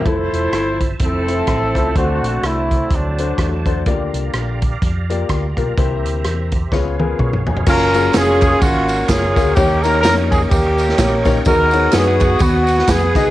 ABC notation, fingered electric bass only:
X:1
M:4/4
L:1/8
Q:"Swing" 1/4=126
K:F
V:1 name="Fingered electric bass" clef=bass
F,,, E,,, G,,,2 F,,,2 A,,, _D,, | D,, B,,, C,,2 D,,2 E,,2 | D,, C,, B,,,2 F,,2 D,, =B,,, | C,, D,, E,,2 _D,,2 _C,, F,,, |
[K:F#] F,,,2 E,,,2 G,,,2 F,,, =D,, | D,,2 E,,2 D,,2 A,,,2 | D,,2 F,,2 D,,2 E,, ^B,,, |]